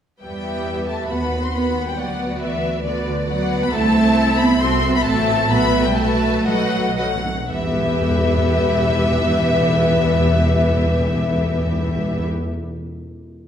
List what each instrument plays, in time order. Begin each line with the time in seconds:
0.22 double bass section E2, cello section G3, viola section B3 G4, violin section B4 E5 G5
0.88 cello section A3, violin section A5
1.09 double bass section D#2, viola section B3 F#4, cello section B3, violin section B4 F#5 B5
1.43 cello section C4, violin section C6
1.53 viola section B3 F#4, cello section B3, violin section B4 F#5 B5
1.87 cello section G3, violin section G5
1.98 double bass section D2, cello section F#3, viola section B3 F#4, violin section B4 D5 F#5
2.41 cello section E3, violin section E5
2.84 cello section D3, viola section B3 F#4, violin section B4 D5
3.28 cello section F#3, viola section B3 F#4, violin section B4 D5 F#5
3.61 cello section B3, violin section B5
3.72 double bass section C2, cello section A3, viola section C4 E4, violin section A4 E5 A5
4.38 cello section B3, violin section B5
4.59 double bass section C2, cello section C4, viola section C4 F#4, violin section A4 E5 C6
4.93 cello section B3, violin section B5
5.04 double bass section A1, cello section A3, viola section C4 F#4, violin section A4 E5 A5
5.49 double bass section B1, viola section A3 F#4, cello section B3, violin section B4 E5 B5
5.85 cello section G3, violin section G5
5.96 cello section A3, viola section A3 F#4, violin section B4 E5 A5
6.45 double bass section B1, timpani B2, cello section F#3, viola section A3 F#4, violin section B4 D#5 F#5
6.54 timpani B2
6.62 timpani B2
6.71 timpani B2
6.79 timpani B2
6.88 timpani B2
6.97 timpani B2, cello section F#3, viola section A3 F#4, violin section B4 D#5 F#5
7.06 timpani B2
7.15 timpani B2
7.25 timpani B2
7.34 timpani B2
7.50 timpani E2, double bass section E2, cello section E3, viola section B3 G4, violin section B4 E5
7.57 timpani E2
7.64 timpani E2
7.72 timpani E2
7.79 timpani E2
7.86 timpani E2
7.94 timpani E2
8.01 timpani E2
8.08 timpani E2
8.15 timpani E2
8.22 timpani E2
8.29 timpani E2
8.37 timpani E2
8.44 timpani E2
8.52 timpani E2
8.59 timpani E2
8.67 timpani E2
8.74 timpani E2
8.81 timpani E2
8.89 timpani E2
8.96 timpani E2
9.04 timpani E2
9.11 timpani E2
9.18 timpani E2
9.25 timpani E2
9.32 timpani E2
9.39 timpani E2
9.46 timpani E2
9.53 timpani E2
9.60 timpani E2
9.67 timpani E2
9.75 timpani E2
9.82 timpani E2
9.89 timpani E2
9.97 timpani E2
10.04 timpani E2
10.12 timpani E2
10.19 timpani E2
10.25 timpani E2
10.32 timpani E2
10.40 timpani E2
10.47 timpani E2
10.55 timpani E2
10.62 timpani E2
10.70 timpani E2
10.77 timpani E2
10.84 timpani E2
10.92 timpani E2
10.99 timpani E2
11.07 timpani E2
11.14 timpani E2
11.22 timpani E2
11.29 timpani E2
11.37 timpani E2
11.45 timpani E2
11.52 timpani E2
11.59 timpani E2
11.66 timpani E2
11.73 timpani E2
11.80 timpani E2
11.88 timpani E2
11.96 timpani E2
12.03 timpani E2
12.10 timpani E2
12.17 timpani E2